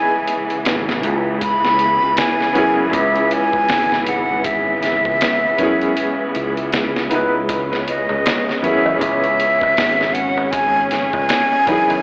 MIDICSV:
0, 0, Header, 1, 7, 480
1, 0, Start_track
1, 0, Key_signature, 4, "minor"
1, 0, Tempo, 759494
1, 896, Time_signature, 4, 2, 24, 8
1, 7599, End_track
2, 0, Start_track
2, 0, Title_t, "Flute"
2, 0, Program_c, 0, 73
2, 0, Note_on_c, 0, 80, 119
2, 631, Note_off_c, 0, 80, 0
2, 903, Note_on_c, 0, 83, 113
2, 1378, Note_on_c, 0, 80, 109
2, 1387, Note_off_c, 0, 83, 0
2, 1857, Note_off_c, 0, 80, 0
2, 1861, Note_on_c, 0, 76, 95
2, 2105, Note_on_c, 0, 80, 115
2, 2115, Note_off_c, 0, 76, 0
2, 2583, Note_on_c, 0, 78, 93
2, 2592, Note_off_c, 0, 80, 0
2, 2815, Note_on_c, 0, 76, 91
2, 2824, Note_off_c, 0, 78, 0
2, 4255, Note_off_c, 0, 76, 0
2, 4981, Note_on_c, 0, 75, 87
2, 5454, Note_on_c, 0, 76, 95
2, 5464, Note_off_c, 0, 75, 0
2, 5687, Note_off_c, 0, 76, 0
2, 5690, Note_on_c, 0, 76, 103
2, 6405, Note_on_c, 0, 78, 103
2, 6415, Note_off_c, 0, 76, 0
2, 6641, Note_on_c, 0, 80, 112
2, 6651, Note_off_c, 0, 78, 0
2, 6884, Note_off_c, 0, 80, 0
2, 6888, Note_on_c, 0, 80, 126
2, 7599, Note_off_c, 0, 80, 0
2, 7599, End_track
3, 0, Start_track
3, 0, Title_t, "Upright piano"
3, 0, Program_c, 1, 0
3, 0, Note_on_c, 1, 59, 83
3, 0, Note_on_c, 1, 63, 78
3, 0, Note_on_c, 1, 64, 76
3, 0, Note_on_c, 1, 68, 93
3, 1587, Note_off_c, 1, 59, 0
3, 1593, Note_off_c, 1, 63, 0
3, 1599, Note_on_c, 1, 59, 89
3, 1600, Note_off_c, 1, 64, 0
3, 1606, Note_off_c, 1, 68, 0
3, 1611, Note_on_c, 1, 61, 79
3, 1623, Note_on_c, 1, 64, 78
3, 1633, Note_on_c, 1, 68, 91
3, 3504, Note_off_c, 1, 59, 0
3, 3510, Note_off_c, 1, 61, 0
3, 3516, Note_off_c, 1, 64, 0
3, 3521, Note_off_c, 1, 68, 0
3, 3521, Note_on_c, 1, 59, 82
3, 3531, Note_on_c, 1, 61, 76
3, 3543, Note_on_c, 1, 64, 73
3, 3557, Note_on_c, 1, 68, 93
3, 4469, Note_off_c, 1, 59, 0
3, 4474, Note_off_c, 1, 61, 0
3, 4480, Note_off_c, 1, 64, 0
3, 4482, Note_on_c, 1, 59, 71
3, 4487, Note_off_c, 1, 68, 0
3, 4494, Note_on_c, 1, 63, 68
3, 4508, Note_on_c, 1, 64, 66
3, 4517, Note_on_c, 1, 71, 79
3, 5426, Note_off_c, 1, 59, 0
3, 5431, Note_off_c, 1, 63, 0
3, 5438, Note_off_c, 1, 64, 0
3, 5443, Note_off_c, 1, 71, 0
3, 5450, Note_on_c, 1, 59, 76
3, 5459, Note_on_c, 1, 61, 76
3, 5471, Note_on_c, 1, 64, 73
3, 5481, Note_on_c, 1, 68, 90
3, 7349, Note_off_c, 1, 59, 0
3, 7354, Note_off_c, 1, 61, 0
3, 7360, Note_off_c, 1, 64, 0
3, 7365, Note_off_c, 1, 68, 0
3, 7366, Note_on_c, 1, 59, 77
3, 7379, Note_on_c, 1, 63, 74
3, 7391, Note_on_c, 1, 64, 77
3, 7403, Note_on_c, 1, 68, 92
3, 7599, Note_off_c, 1, 59, 0
3, 7599, Note_off_c, 1, 63, 0
3, 7599, Note_off_c, 1, 64, 0
3, 7599, Note_off_c, 1, 68, 0
3, 7599, End_track
4, 0, Start_track
4, 0, Title_t, "String section"
4, 0, Program_c, 2, 48
4, 0, Note_on_c, 2, 49, 74
4, 0, Note_on_c, 2, 52, 83
4, 0, Note_on_c, 2, 56, 68
4, 0, Note_on_c, 2, 59, 67
4, 4728, Note_on_c, 2, 61, 86
4, 4737, Note_off_c, 2, 52, 0
4, 7599, Note_off_c, 2, 49, 0
4, 7599, Note_off_c, 2, 56, 0
4, 7599, Note_off_c, 2, 59, 0
4, 7599, Note_off_c, 2, 61, 0
4, 7599, End_track
5, 0, Start_track
5, 0, Title_t, "Fingered electric bass"
5, 0, Program_c, 3, 33
5, 418, Note_on_c, 3, 32, 105
5, 656, Note_off_c, 3, 32, 0
5, 656, Note_on_c, 3, 37, 88
5, 1250, Note_off_c, 3, 37, 0
5, 1279, Note_on_c, 3, 37, 90
5, 1365, Note_off_c, 3, 37, 0
5, 1617, Note_on_c, 3, 42, 86
5, 1855, Note_off_c, 3, 42, 0
5, 1855, Note_on_c, 3, 37, 81
5, 2316, Note_off_c, 3, 37, 0
5, 2333, Note_on_c, 3, 32, 94
5, 3168, Note_off_c, 3, 32, 0
5, 3195, Note_on_c, 3, 37, 93
5, 3283, Note_off_c, 3, 37, 0
5, 3534, Note_on_c, 3, 42, 82
5, 3751, Note_off_c, 3, 42, 0
5, 4020, Note_on_c, 3, 37, 87
5, 4479, Note_off_c, 3, 37, 0
5, 4498, Note_on_c, 3, 37, 83
5, 5091, Note_off_c, 3, 37, 0
5, 5121, Note_on_c, 3, 37, 95
5, 5206, Note_off_c, 3, 37, 0
5, 5461, Note_on_c, 3, 42, 83
5, 5696, Note_off_c, 3, 42, 0
5, 5696, Note_on_c, 3, 37, 81
5, 6157, Note_off_c, 3, 37, 0
5, 6182, Note_on_c, 3, 32, 86
5, 7013, Note_off_c, 3, 32, 0
5, 7039, Note_on_c, 3, 37, 97
5, 7125, Note_off_c, 3, 37, 0
5, 7380, Note_on_c, 3, 42, 90
5, 7594, Note_off_c, 3, 42, 0
5, 7599, End_track
6, 0, Start_track
6, 0, Title_t, "Darbuka"
6, 4735, Note_on_c, 9, 63, 64
6, 4798, Note_off_c, 9, 63, 0
6, 4878, Note_on_c, 9, 63, 41
6, 4941, Note_off_c, 9, 63, 0
6, 5114, Note_on_c, 9, 63, 72
6, 5177, Note_off_c, 9, 63, 0
6, 5220, Note_on_c, 9, 63, 61
6, 5283, Note_off_c, 9, 63, 0
6, 5362, Note_on_c, 9, 63, 41
6, 5425, Note_off_c, 9, 63, 0
6, 5452, Note_on_c, 9, 64, 78
6, 5515, Note_off_c, 9, 64, 0
6, 5598, Note_on_c, 9, 63, 72
6, 5599, Note_on_c, 9, 64, 78
6, 5662, Note_off_c, 9, 63, 0
6, 5662, Note_off_c, 9, 64, 0
6, 5699, Note_on_c, 9, 63, 58
6, 5762, Note_off_c, 9, 63, 0
6, 5838, Note_on_c, 9, 63, 43
6, 5901, Note_off_c, 9, 63, 0
6, 6087, Note_on_c, 9, 63, 80
6, 6150, Note_off_c, 9, 63, 0
6, 6182, Note_on_c, 9, 63, 67
6, 6245, Note_off_c, 9, 63, 0
6, 6323, Note_on_c, 9, 63, 44
6, 6386, Note_off_c, 9, 63, 0
6, 6558, Note_on_c, 9, 63, 77
6, 6621, Note_off_c, 9, 63, 0
6, 6656, Note_on_c, 9, 63, 61
6, 6720, Note_off_c, 9, 63, 0
6, 6800, Note_on_c, 9, 63, 37
6, 6863, Note_off_c, 9, 63, 0
6, 7038, Note_on_c, 9, 63, 79
6, 7101, Note_off_c, 9, 63, 0
6, 7134, Note_on_c, 9, 63, 57
6, 7198, Note_off_c, 9, 63, 0
6, 7280, Note_on_c, 9, 63, 38
6, 7343, Note_off_c, 9, 63, 0
6, 7383, Note_on_c, 9, 64, 78
6, 7446, Note_off_c, 9, 64, 0
6, 7524, Note_on_c, 9, 63, 66
6, 7524, Note_on_c, 9, 64, 77
6, 7587, Note_off_c, 9, 63, 0
6, 7587, Note_off_c, 9, 64, 0
6, 7599, End_track
7, 0, Start_track
7, 0, Title_t, "Drums"
7, 174, Note_on_c, 9, 42, 69
7, 237, Note_off_c, 9, 42, 0
7, 317, Note_on_c, 9, 42, 43
7, 380, Note_off_c, 9, 42, 0
7, 413, Note_on_c, 9, 42, 82
7, 420, Note_on_c, 9, 38, 111
7, 476, Note_off_c, 9, 42, 0
7, 483, Note_off_c, 9, 38, 0
7, 561, Note_on_c, 9, 38, 54
7, 625, Note_off_c, 9, 38, 0
7, 653, Note_on_c, 9, 42, 70
7, 716, Note_off_c, 9, 42, 0
7, 893, Note_on_c, 9, 36, 114
7, 894, Note_on_c, 9, 42, 89
7, 956, Note_off_c, 9, 36, 0
7, 957, Note_off_c, 9, 42, 0
7, 1040, Note_on_c, 9, 38, 49
7, 1103, Note_off_c, 9, 38, 0
7, 1131, Note_on_c, 9, 42, 64
7, 1194, Note_off_c, 9, 42, 0
7, 1371, Note_on_c, 9, 42, 97
7, 1378, Note_on_c, 9, 38, 117
7, 1434, Note_off_c, 9, 42, 0
7, 1441, Note_off_c, 9, 38, 0
7, 1520, Note_on_c, 9, 38, 34
7, 1583, Note_off_c, 9, 38, 0
7, 1614, Note_on_c, 9, 42, 66
7, 1677, Note_off_c, 9, 42, 0
7, 1852, Note_on_c, 9, 36, 118
7, 1853, Note_on_c, 9, 42, 92
7, 1915, Note_off_c, 9, 36, 0
7, 1916, Note_off_c, 9, 42, 0
7, 1994, Note_on_c, 9, 42, 45
7, 2057, Note_off_c, 9, 42, 0
7, 2092, Note_on_c, 9, 42, 68
7, 2155, Note_off_c, 9, 42, 0
7, 2233, Note_on_c, 9, 36, 93
7, 2296, Note_off_c, 9, 36, 0
7, 2329, Note_on_c, 9, 46, 77
7, 2336, Note_on_c, 9, 38, 102
7, 2392, Note_off_c, 9, 46, 0
7, 2399, Note_off_c, 9, 38, 0
7, 2478, Note_on_c, 9, 38, 40
7, 2541, Note_off_c, 9, 38, 0
7, 2569, Note_on_c, 9, 42, 74
7, 2632, Note_off_c, 9, 42, 0
7, 2809, Note_on_c, 9, 42, 94
7, 2810, Note_on_c, 9, 36, 115
7, 2872, Note_off_c, 9, 42, 0
7, 2873, Note_off_c, 9, 36, 0
7, 3050, Note_on_c, 9, 42, 67
7, 3057, Note_on_c, 9, 38, 41
7, 3113, Note_off_c, 9, 42, 0
7, 3120, Note_off_c, 9, 38, 0
7, 3193, Note_on_c, 9, 36, 94
7, 3256, Note_off_c, 9, 36, 0
7, 3292, Note_on_c, 9, 42, 97
7, 3299, Note_on_c, 9, 38, 124
7, 3355, Note_off_c, 9, 42, 0
7, 3362, Note_off_c, 9, 38, 0
7, 3529, Note_on_c, 9, 42, 66
7, 3531, Note_on_c, 9, 36, 90
7, 3593, Note_off_c, 9, 42, 0
7, 3594, Note_off_c, 9, 36, 0
7, 3675, Note_on_c, 9, 42, 45
7, 3738, Note_off_c, 9, 42, 0
7, 3772, Note_on_c, 9, 42, 90
7, 3835, Note_off_c, 9, 42, 0
7, 4012, Note_on_c, 9, 42, 67
7, 4075, Note_off_c, 9, 42, 0
7, 4154, Note_on_c, 9, 42, 43
7, 4217, Note_off_c, 9, 42, 0
7, 4250, Note_on_c, 9, 42, 81
7, 4257, Note_on_c, 9, 38, 105
7, 4313, Note_off_c, 9, 42, 0
7, 4320, Note_off_c, 9, 38, 0
7, 4401, Note_on_c, 9, 38, 53
7, 4465, Note_off_c, 9, 38, 0
7, 4492, Note_on_c, 9, 42, 74
7, 4555, Note_off_c, 9, 42, 0
7, 4733, Note_on_c, 9, 42, 89
7, 4734, Note_on_c, 9, 36, 116
7, 4796, Note_off_c, 9, 42, 0
7, 4797, Note_off_c, 9, 36, 0
7, 4884, Note_on_c, 9, 38, 46
7, 4947, Note_off_c, 9, 38, 0
7, 4978, Note_on_c, 9, 42, 68
7, 5041, Note_off_c, 9, 42, 0
7, 5218, Note_on_c, 9, 42, 94
7, 5225, Note_on_c, 9, 38, 126
7, 5282, Note_off_c, 9, 42, 0
7, 5289, Note_off_c, 9, 38, 0
7, 5368, Note_on_c, 9, 38, 38
7, 5431, Note_off_c, 9, 38, 0
7, 5459, Note_on_c, 9, 42, 64
7, 5523, Note_off_c, 9, 42, 0
7, 5695, Note_on_c, 9, 36, 116
7, 5696, Note_on_c, 9, 42, 94
7, 5758, Note_off_c, 9, 36, 0
7, 5759, Note_off_c, 9, 42, 0
7, 5837, Note_on_c, 9, 42, 43
7, 5901, Note_off_c, 9, 42, 0
7, 5939, Note_on_c, 9, 42, 70
7, 6002, Note_off_c, 9, 42, 0
7, 6076, Note_on_c, 9, 36, 97
7, 6140, Note_off_c, 9, 36, 0
7, 6175, Note_on_c, 9, 46, 73
7, 6182, Note_on_c, 9, 38, 111
7, 6238, Note_off_c, 9, 46, 0
7, 6245, Note_off_c, 9, 38, 0
7, 6326, Note_on_c, 9, 38, 41
7, 6389, Note_off_c, 9, 38, 0
7, 6414, Note_on_c, 9, 42, 74
7, 6477, Note_off_c, 9, 42, 0
7, 6653, Note_on_c, 9, 42, 93
7, 6654, Note_on_c, 9, 36, 107
7, 6716, Note_off_c, 9, 42, 0
7, 6718, Note_off_c, 9, 36, 0
7, 6894, Note_on_c, 9, 42, 66
7, 6901, Note_on_c, 9, 38, 39
7, 6957, Note_off_c, 9, 42, 0
7, 6964, Note_off_c, 9, 38, 0
7, 7036, Note_on_c, 9, 36, 96
7, 7099, Note_off_c, 9, 36, 0
7, 7135, Note_on_c, 9, 42, 93
7, 7142, Note_on_c, 9, 38, 127
7, 7198, Note_off_c, 9, 42, 0
7, 7205, Note_off_c, 9, 38, 0
7, 7376, Note_on_c, 9, 36, 93
7, 7377, Note_on_c, 9, 42, 72
7, 7439, Note_off_c, 9, 36, 0
7, 7440, Note_off_c, 9, 42, 0
7, 7520, Note_on_c, 9, 42, 44
7, 7583, Note_off_c, 9, 42, 0
7, 7599, End_track
0, 0, End_of_file